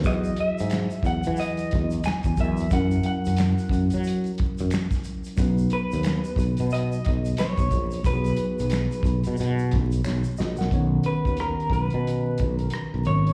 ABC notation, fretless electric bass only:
X:1
M:4/4
L:1/16
Q:"Swing 16ths" 1/4=90
K:B
V:1 name="Fretless electric bass" clef=bass
E,,2 z G,,2 z E,, E,3 E,,2 z E,, E,,2 | F,,2 z F,,2 z F,, F,3 z F,, z4 | B,,,2 z D,,2 z B,,, B,,3 B,,,2 z B,,, A,,,2 | B,,,2 z B,,,2 z B,,, B,, B,,2 B,,,2 B,,, z A,,, B,,, |
B,,,2 z D,,2 z B,,, B,,3 B,,,2 z B,,, G,,,2 |]